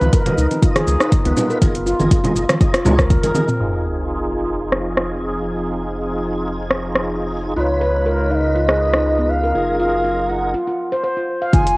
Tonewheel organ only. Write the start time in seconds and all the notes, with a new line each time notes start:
0.01 D#4 F4 B4
0.26 D#4 F4 D#5
0.62 D#4 F4 D#5
1.00 D#4 F4 B4
1.25 D#4 F4 B4
1.61 D#4 G#4 A#4
2.00 D#4 G#4 A#4
2.24 D#4 G#4 D#5
2.61 D#4 G#4 D#5
2.85 D#4 G#4 C#5
3.23 D#4 G#4 A#4
3.35 D#4 G#4 A#4
3.60 D#4 F4 G#4
7.57 D#4 F4 B4
9.55 D#4 G#4 A#4
11.53 D#4 F4 G#4